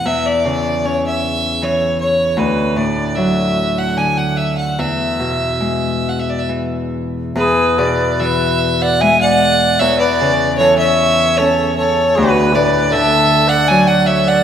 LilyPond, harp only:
\new Staff \with { instrumentName = "Harp" } { \clef bass \time 3/4 \key e \mixolydian \tempo 4 = 75 e,8 cis8 cis'4 e4 | d,8 a,8 fis4 d4 | e,8 b,8 gis4 e4 | e,8 b,8 e4 gis4 |
e,8 cis8 e4 cis'4 | d,8 a,8 d4 fis4 | }